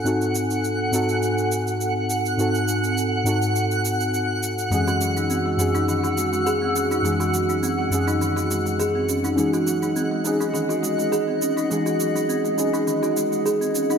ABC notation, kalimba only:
X:1
M:4/4
L:1/16
Q:"Swing 16ths" 1/4=103
K:none
V:1 name="Kalimba"
z16 | z16 | ^G, ^F ^F, ^D ^B, G, ^C D ^D, F G, G, ^G B, C D | ^G, ^F ^F, ^D ^B, G, ^C D ^D, F G, G, ^G B, C D |
^G, ^F ^F, ^D ^B, G, ^C D ^D, F G, G, ^G B, C D | ^G, ^F ^F, ^D ^B, G, ^C D ^D, F G, G, ^G B, C D |]